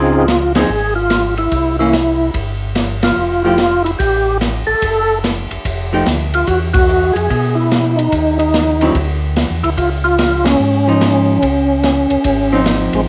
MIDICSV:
0, 0, Header, 1, 5, 480
1, 0, Start_track
1, 0, Tempo, 412655
1, 1767, Time_signature, 4, 2, 24, 8
1, 15217, End_track
2, 0, Start_track
2, 0, Title_t, "Tonewheel organ"
2, 0, Program_c, 0, 16
2, 0, Note_on_c, 0, 49, 55
2, 0, Note_on_c, 0, 60, 47
2, 0, Note_on_c, 0, 63, 50
2, 0, Note_on_c, 0, 65, 75
2, 0, Note_on_c, 0, 68, 59
2, 149, Note_off_c, 0, 65, 0
2, 166, Note_on_c, 0, 65, 86
2, 292, Note_off_c, 0, 49, 0
2, 296, Note_off_c, 0, 60, 0
2, 297, Note_off_c, 0, 63, 0
2, 305, Note_off_c, 0, 68, 0
2, 610, Note_off_c, 0, 65, 0
2, 650, Note_on_c, 0, 68, 83
2, 1093, Note_off_c, 0, 68, 0
2, 1111, Note_on_c, 0, 65, 92
2, 1563, Note_off_c, 0, 65, 0
2, 1609, Note_on_c, 0, 64, 74
2, 2053, Note_off_c, 0, 64, 0
2, 2085, Note_on_c, 0, 64, 65
2, 2684, Note_off_c, 0, 64, 0
2, 3537, Note_on_c, 0, 65, 73
2, 3990, Note_off_c, 0, 65, 0
2, 4004, Note_on_c, 0, 65, 86
2, 4452, Note_off_c, 0, 65, 0
2, 4472, Note_on_c, 0, 64, 77
2, 4549, Note_off_c, 0, 64, 0
2, 4640, Note_on_c, 0, 67, 87
2, 5092, Note_off_c, 0, 67, 0
2, 5431, Note_on_c, 0, 69, 82
2, 6038, Note_off_c, 0, 69, 0
2, 7384, Note_on_c, 0, 65, 74
2, 7530, Note_off_c, 0, 65, 0
2, 7530, Note_on_c, 0, 66, 86
2, 7672, Note_off_c, 0, 66, 0
2, 7836, Note_on_c, 0, 66, 88
2, 8298, Note_on_c, 0, 68, 80
2, 8336, Note_off_c, 0, 66, 0
2, 8783, Note_on_c, 0, 64, 75
2, 8807, Note_off_c, 0, 68, 0
2, 9260, Note_on_c, 0, 63, 88
2, 9290, Note_off_c, 0, 64, 0
2, 9743, Note_off_c, 0, 63, 0
2, 9757, Note_on_c, 0, 63, 82
2, 10361, Note_off_c, 0, 63, 0
2, 11207, Note_on_c, 0, 64, 84
2, 11281, Note_off_c, 0, 64, 0
2, 11368, Note_on_c, 0, 65, 86
2, 11511, Note_off_c, 0, 65, 0
2, 11681, Note_on_c, 0, 65, 92
2, 12148, Note_on_c, 0, 61, 80
2, 12178, Note_off_c, 0, 65, 0
2, 14674, Note_off_c, 0, 61, 0
2, 15064, Note_on_c, 0, 60, 74
2, 15071, Note_on_c, 0, 56, 61
2, 15133, Note_off_c, 0, 60, 0
2, 15138, Note_off_c, 0, 56, 0
2, 15217, End_track
3, 0, Start_track
3, 0, Title_t, "Hollow-body jazz guitar"
3, 0, Program_c, 1, 26
3, 644, Note_on_c, 1, 53, 49
3, 655, Note_on_c, 1, 60, 48
3, 661, Note_on_c, 1, 63, 57
3, 791, Note_off_c, 1, 53, 0
3, 796, Note_off_c, 1, 60, 0
3, 799, Note_off_c, 1, 63, 0
3, 2087, Note_on_c, 1, 52, 45
3, 2096, Note_on_c, 1, 58, 55
3, 2101, Note_on_c, 1, 61, 62
3, 2233, Note_off_c, 1, 52, 0
3, 2238, Note_off_c, 1, 58, 0
3, 2240, Note_off_c, 1, 61, 0
3, 4010, Note_on_c, 1, 53, 60
3, 4015, Note_on_c, 1, 57, 58
3, 4022, Note_on_c, 1, 64, 55
3, 4023, Note_on_c, 1, 67, 65
3, 4156, Note_off_c, 1, 53, 0
3, 4159, Note_off_c, 1, 57, 0
3, 4162, Note_off_c, 1, 64, 0
3, 4163, Note_off_c, 1, 67, 0
3, 6896, Note_on_c, 1, 53, 55
3, 6902, Note_on_c, 1, 57, 52
3, 6908, Note_on_c, 1, 63, 59
3, 6909, Note_on_c, 1, 67, 60
3, 7040, Note_off_c, 1, 53, 0
3, 7043, Note_off_c, 1, 57, 0
3, 7046, Note_off_c, 1, 63, 0
3, 7046, Note_off_c, 1, 67, 0
3, 10253, Note_on_c, 1, 50, 59
3, 10259, Note_on_c, 1, 54, 62
3, 10261, Note_on_c, 1, 60, 66
3, 10270, Note_on_c, 1, 64, 70
3, 10399, Note_off_c, 1, 50, 0
3, 10401, Note_off_c, 1, 54, 0
3, 10402, Note_off_c, 1, 60, 0
3, 10407, Note_off_c, 1, 64, 0
3, 12651, Note_on_c, 1, 53, 57
3, 12664, Note_on_c, 1, 63, 66
3, 13260, Note_off_c, 1, 53, 0
3, 13266, Note_off_c, 1, 63, 0
3, 14567, Note_on_c, 1, 53, 59
3, 14571, Note_on_c, 1, 60, 68
3, 14580, Note_on_c, 1, 63, 69
3, 15176, Note_off_c, 1, 53, 0
3, 15179, Note_off_c, 1, 60, 0
3, 15183, Note_off_c, 1, 63, 0
3, 15217, End_track
4, 0, Start_track
4, 0, Title_t, "Tonewheel organ"
4, 0, Program_c, 2, 16
4, 0, Note_on_c, 2, 37, 53
4, 759, Note_off_c, 2, 37, 0
4, 800, Note_on_c, 2, 32, 81
4, 1718, Note_off_c, 2, 32, 0
4, 1768, Note_on_c, 2, 36, 56
4, 2682, Note_off_c, 2, 36, 0
4, 2722, Note_on_c, 2, 31, 76
4, 3640, Note_off_c, 2, 31, 0
4, 3682, Note_on_c, 2, 29, 58
4, 4600, Note_off_c, 2, 29, 0
4, 4653, Note_on_c, 2, 33, 87
4, 5401, Note_off_c, 2, 33, 0
4, 5438, Note_on_c, 2, 33, 34
4, 5523, Note_off_c, 2, 33, 0
4, 5611, Note_on_c, 2, 30, 73
4, 6360, Note_off_c, 2, 30, 0
4, 6408, Note_on_c, 2, 30, 26
4, 6490, Note_off_c, 2, 30, 0
4, 6574, Note_on_c, 2, 29, 75
4, 7020, Note_off_c, 2, 29, 0
4, 7053, Note_on_c, 2, 38, 66
4, 7499, Note_off_c, 2, 38, 0
4, 7532, Note_on_c, 2, 40, 58
4, 8281, Note_off_c, 2, 40, 0
4, 8324, Note_on_c, 2, 41, 54
4, 8479, Note_off_c, 2, 41, 0
4, 8493, Note_on_c, 2, 47, 79
4, 9406, Note_off_c, 2, 47, 0
4, 9450, Note_on_c, 2, 39, 61
4, 10364, Note_off_c, 2, 39, 0
4, 10408, Note_on_c, 2, 38, 87
4, 11005, Note_off_c, 2, 38, 0
4, 11053, Note_on_c, 2, 40, 52
4, 11201, Note_off_c, 2, 40, 0
4, 11212, Note_on_c, 2, 38, 60
4, 11360, Note_off_c, 2, 38, 0
4, 11369, Note_on_c, 2, 37, 65
4, 12284, Note_off_c, 2, 37, 0
4, 12328, Note_on_c, 2, 44, 85
4, 13243, Note_off_c, 2, 44, 0
4, 13290, Note_on_c, 2, 37, 65
4, 14038, Note_off_c, 2, 37, 0
4, 14081, Note_on_c, 2, 37, 30
4, 14165, Note_off_c, 2, 37, 0
4, 14246, Note_on_c, 2, 32, 82
4, 14995, Note_off_c, 2, 32, 0
4, 15038, Note_on_c, 2, 33, 59
4, 15194, Note_off_c, 2, 33, 0
4, 15217, End_track
5, 0, Start_track
5, 0, Title_t, "Drums"
5, 326, Note_on_c, 9, 44, 47
5, 326, Note_on_c, 9, 51, 42
5, 329, Note_on_c, 9, 38, 56
5, 442, Note_off_c, 9, 44, 0
5, 442, Note_off_c, 9, 51, 0
5, 446, Note_off_c, 9, 38, 0
5, 642, Note_on_c, 9, 51, 62
5, 645, Note_on_c, 9, 38, 62
5, 758, Note_off_c, 9, 51, 0
5, 761, Note_off_c, 9, 38, 0
5, 1281, Note_on_c, 9, 44, 43
5, 1281, Note_on_c, 9, 51, 58
5, 1285, Note_on_c, 9, 38, 57
5, 1397, Note_off_c, 9, 44, 0
5, 1397, Note_off_c, 9, 51, 0
5, 1401, Note_off_c, 9, 38, 0
5, 1599, Note_on_c, 9, 51, 34
5, 1715, Note_off_c, 9, 51, 0
5, 1764, Note_on_c, 9, 51, 49
5, 1767, Note_on_c, 9, 36, 27
5, 1880, Note_off_c, 9, 51, 0
5, 1884, Note_off_c, 9, 36, 0
5, 2248, Note_on_c, 9, 44, 37
5, 2248, Note_on_c, 9, 51, 47
5, 2252, Note_on_c, 9, 38, 44
5, 2365, Note_off_c, 9, 44, 0
5, 2365, Note_off_c, 9, 51, 0
5, 2368, Note_off_c, 9, 38, 0
5, 2724, Note_on_c, 9, 51, 53
5, 2727, Note_on_c, 9, 36, 32
5, 2840, Note_off_c, 9, 51, 0
5, 2843, Note_off_c, 9, 36, 0
5, 3204, Note_on_c, 9, 44, 56
5, 3204, Note_on_c, 9, 51, 58
5, 3208, Note_on_c, 9, 38, 54
5, 3321, Note_off_c, 9, 44, 0
5, 3321, Note_off_c, 9, 51, 0
5, 3324, Note_off_c, 9, 38, 0
5, 3522, Note_on_c, 9, 51, 62
5, 3525, Note_on_c, 9, 38, 67
5, 3638, Note_off_c, 9, 51, 0
5, 3642, Note_off_c, 9, 38, 0
5, 4163, Note_on_c, 9, 44, 41
5, 4163, Note_on_c, 9, 51, 46
5, 4167, Note_on_c, 9, 38, 50
5, 4280, Note_off_c, 9, 44, 0
5, 4280, Note_off_c, 9, 51, 0
5, 4283, Note_off_c, 9, 38, 0
5, 4490, Note_on_c, 9, 51, 39
5, 4606, Note_off_c, 9, 51, 0
5, 4650, Note_on_c, 9, 51, 53
5, 4652, Note_on_c, 9, 36, 35
5, 4766, Note_off_c, 9, 51, 0
5, 4768, Note_off_c, 9, 36, 0
5, 5130, Note_on_c, 9, 44, 49
5, 5130, Note_on_c, 9, 51, 57
5, 5133, Note_on_c, 9, 38, 52
5, 5246, Note_off_c, 9, 44, 0
5, 5246, Note_off_c, 9, 51, 0
5, 5249, Note_off_c, 9, 38, 0
5, 5608, Note_on_c, 9, 51, 53
5, 5611, Note_on_c, 9, 36, 30
5, 5724, Note_off_c, 9, 51, 0
5, 5728, Note_off_c, 9, 36, 0
5, 6093, Note_on_c, 9, 44, 51
5, 6093, Note_on_c, 9, 51, 52
5, 6097, Note_on_c, 9, 38, 54
5, 6210, Note_off_c, 9, 44, 0
5, 6210, Note_off_c, 9, 51, 0
5, 6213, Note_off_c, 9, 38, 0
5, 6408, Note_on_c, 9, 51, 41
5, 6525, Note_off_c, 9, 51, 0
5, 6574, Note_on_c, 9, 36, 30
5, 6574, Note_on_c, 9, 51, 60
5, 6690, Note_off_c, 9, 36, 0
5, 6690, Note_off_c, 9, 51, 0
5, 7051, Note_on_c, 9, 44, 55
5, 7051, Note_on_c, 9, 51, 52
5, 7055, Note_on_c, 9, 38, 63
5, 7168, Note_off_c, 9, 44, 0
5, 7168, Note_off_c, 9, 51, 0
5, 7171, Note_off_c, 9, 38, 0
5, 7370, Note_on_c, 9, 51, 38
5, 7486, Note_off_c, 9, 51, 0
5, 7529, Note_on_c, 9, 51, 52
5, 7533, Note_on_c, 9, 36, 28
5, 7646, Note_off_c, 9, 51, 0
5, 7650, Note_off_c, 9, 36, 0
5, 7841, Note_on_c, 9, 51, 63
5, 7848, Note_on_c, 9, 36, 69
5, 7957, Note_off_c, 9, 51, 0
5, 7964, Note_off_c, 9, 36, 0
5, 8009, Note_on_c, 9, 44, 38
5, 8125, Note_off_c, 9, 44, 0
5, 8328, Note_on_c, 9, 51, 37
5, 8444, Note_off_c, 9, 51, 0
5, 8493, Note_on_c, 9, 36, 35
5, 8494, Note_on_c, 9, 51, 51
5, 8610, Note_off_c, 9, 36, 0
5, 8610, Note_off_c, 9, 51, 0
5, 8974, Note_on_c, 9, 44, 43
5, 8974, Note_on_c, 9, 51, 52
5, 8977, Note_on_c, 9, 38, 57
5, 9090, Note_off_c, 9, 44, 0
5, 9090, Note_off_c, 9, 51, 0
5, 9093, Note_off_c, 9, 38, 0
5, 9289, Note_on_c, 9, 51, 37
5, 9405, Note_off_c, 9, 51, 0
5, 9447, Note_on_c, 9, 51, 52
5, 9449, Note_on_c, 9, 36, 29
5, 9563, Note_off_c, 9, 51, 0
5, 9566, Note_off_c, 9, 36, 0
5, 9761, Note_on_c, 9, 51, 39
5, 9878, Note_off_c, 9, 51, 0
5, 9929, Note_on_c, 9, 44, 48
5, 9929, Note_on_c, 9, 51, 46
5, 9933, Note_on_c, 9, 38, 53
5, 10046, Note_off_c, 9, 44, 0
5, 10046, Note_off_c, 9, 51, 0
5, 10049, Note_off_c, 9, 38, 0
5, 10246, Note_on_c, 9, 51, 39
5, 10362, Note_off_c, 9, 51, 0
5, 10407, Note_on_c, 9, 51, 56
5, 10410, Note_on_c, 9, 36, 31
5, 10523, Note_off_c, 9, 51, 0
5, 10526, Note_off_c, 9, 36, 0
5, 10890, Note_on_c, 9, 44, 54
5, 10890, Note_on_c, 9, 51, 56
5, 10894, Note_on_c, 9, 38, 64
5, 11007, Note_off_c, 9, 44, 0
5, 11007, Note_off_c, 9, 51, 0
5, 11010, Note_off_c, 9, 38, 0
5, 11208, Note_on_c, 9, 51, 39
5, 11324, Note_off_c, 9, 51, 0
5, 11371, Note_on_c, 9, 51, 44
5, 11372, Note_on_c, 9, 36, 28
5, 11488, Note_off_c, 9, 36, 0
5, 11488, Note_off_c, 9, 51, 0
5, 11850, Note_on_c, 9, 44, 41
5, 11850, Note_on_c, 9, 51, 56
5, 11853, Note_on_c, 9, 38, 57
5, 11966, Note_off_c, 9, 44, 0
5, 11966, Note_off_c, 9, 51, 0
5, 11970, Note_off_c, 9, 38, 0
5, 12162, Note_on_c, 9, 51, 62
5, 12166, Note_on_c, 9, 38, 73
5, 12278, Note_off_c, 9, 51, 0
5, 12282, Note_off_c, 9, 38, 0
5, 12808, Note_on_c, 9, 44, 45
5, 12808, Note_on_c, 9, 51, 60
5, 12812, Note_on_c, 9, 38, 57
5, 12925, Note_off_c, 9, 44, 0
5, 12925, Note_off_c, 9, 51, 0
5, 12928, Note_off_c, 9, 38, 0
5, 13288, Note_on_c, 9, 51, 51
5, 13291, Note_on_c, 9, 36, 30
5, 13405, Note_off_c, 9, 51, 0
5, 13408, Note_off_c, 9, 36, 0
5, 13766, Note_on_c, 9, 44, 51
5, 13766, Note_on_c, 9, 51, 47
5, 13769, Note_on_c, 9, 38, 48
5, 13882, Note_off_c, 9, 44, 0
5, 13882, Note_off_c, 9, 51, 0
5, 13886, Note_off_c, 9, 38, 0
5, 14077, Note_on_c, 9, 51, 40
5, 14193, Note_off_c, 9, 51, 0
5, 14241, Note_on_c, 9, 51, 59
5, 14247, Note_on_c, 9, 36, 32
5, 14357, Note_off_c, 9, 51, 0
5, 14364, Note_off_c, 9, 36, 0
5, 14723, Note_on_c, 9, 44, 49
5, 14723, Note_on_c, 9, 51, 56
5, 14726, Note_on_c, 9, 38, 60
5, 14839, Note_off_c, 9, 44, 0
5, 14839, Note_off_c, 9, 51, 0
5, 14843, Note_off_c, 9, 38, 0
5, 15041, Note_on_c, 9, 51, 42
5, 15157, Note_off_c, 9, 51, 0
5, 15217, End_track
0, 0, End_of_file